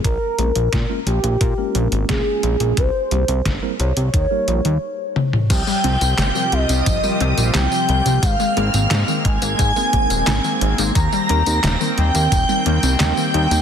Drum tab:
CC |----------------|----------------|x---------------|----------------|
HH |x-xxx-xxx-xxx-xx|x-xxx-xxx-xx----|x-xxx-xxx-xxx-xx|x-xxx-xxx-xxx-xx|
TB |----------------|----------------|xx-xxx-xxx-xxx-x|xx-xxx-xxx-xxx-x|
CP |----------------|----------------|----x-------x---|----x-------x---|
SD |----o-------o---|----o-----------|----o-------o---|----o-------o---|
T1 |----------------|--------------o-|----------------|----------------|
T2 |----------------|---------------o|----------------|----------------|
BD |o---o---o---o---|o---o---o-------|o-------o-------|o-----o-o-o-----|

CC |----------------|
HH |x-xxx-xxx-xxx-xx|
TB |xx-xxx-xxx-xxx-x|
CP |----x-------x---|
SD |----o-------o---|
T1 |----------------|
T2 |----------------|
BD |o-------o-------|